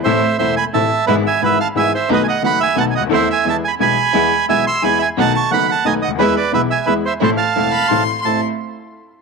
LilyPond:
<<
  \new Staff \with { instrumentName = "Violin" } { \time 3/4 \key a \minor \tempo 4 = 176 r2. | r2. | r2. | r2. |
r2. | r2. | r2. | r4. b''8 c'''4 |
c'''8 r2 r8 | }
  \new Staff \with { instrumentName = "Bandoneon" } { \time 3/4 \key a \minor << { e''4 e''8 b''8 a''4 | e''8 gis''8 e''8 a''8 gis''8 e''8 | dis''16. gis''32 fis''8 b''8 gis''8 a''16. gis''32 fis''8 | e''8 gis''8 a''8 b''8 b''4~ |
b''4 gis''8 e'''8 b''8 gis''8 | a''8 cis'''8 b''8 a''8 gis''8 fis''8 | e''8 d''8 e''8 gis''8 e''8 e''8 | c''8 a''2 r8 |
a''8 r2 r8 | } \\ { c''4 c''8 gis''8 e''4 | b'8 e''8 b'8 f''8 e''8 c''8 | b'8 dis''8 fis''8 e''8 fis''8 dis''8 | c''8 e''8 e''8 gis''8 gis''4~ |
gis''4 e''8 c'''8 gis''8 e''8 | fis''8 a''8 fis''8 fis''8 dis''8 dis''8 | b'8 b'8 b'8 e''8 b'8 c''8 | a'8 f''2 r8 |
r2. | } >> }
  \new Staff \with { instrumentName = "String section" } { \time 3/4 \key a \minor <a c' e'>8 r8 <a c' e'>8 r8 <a c' e'>8 r8 | <gis b e'>8 r8 <gis b e'>8 r8 <gis b e'>8 r8 | <a b dis'>8 r8 <a b dis'>8 r8 <a b dis'>8 r8 | <e a c' e'>8 r8 <gis b e'>8 r8 <gis b e'>8 r8 |
<gis b e'>8 r8 <gis b e'>8 r8 <gis b e'>8 r8 | <a b dis'>8 r8 <a b dis'>8 r8 <a b dis'>8 r8 | <gis b e'>8 r8 <gis b e'>8 r8 <gis b e'>8 r8 | <a c' e'>8 r8 <a c' e'>8 r8 <a c' e'>8 r8 |
<a c' e'>8 r2 r8 | }
  \new Staff \with { instrumentName = "Grand piano" } { \clef bass \time 3/4 \key a \minor <a,, a, e a c' a'>8 r8 <e,, e, e a c' a'>8 r8 <a,, a, e a c' a'>8 r8 | <gis,, gis, e gis b gis'>8 r8 <gis,, gis, e gis b gis'>8 r8 <gis,, gis, e gis b gis'>8 r8 | <b,, b, dis a b fis'>8 r8 <fis,, fis, dis a b fis'>8 r8 <b,, b, dis a b fis'>8 r32 cis,32 d,32 dis,32 | <e, e a c' a'>8 r8 <e, e gis b gis'>8 r8 <b,, b, e gis b gis'>8 r8 |
<e, e gis b gis'>8 r8 <b,, b, e gis b gis'>8 r8 <e, e gis b gis'>8 r8 | <b,, b, dis a b fis'>8 r8 <fis,, fis, dis a b fis'>8 r8 <b,, b, dis a b fis'>8 r32 cis,32 d,32 dis,32 | <e, e gis b gis'>8 r8 <b,, b, e gis b gis'>8 r8 <e, e gis b gis'>8 r8 | <a,, a, e a c' a'>8 r8 <e,, e, e a c' a'>8 r8 <a,, a, e a c' a'>8 r8 |
<a,, c' e' a'>8 r2 r8 | }
>>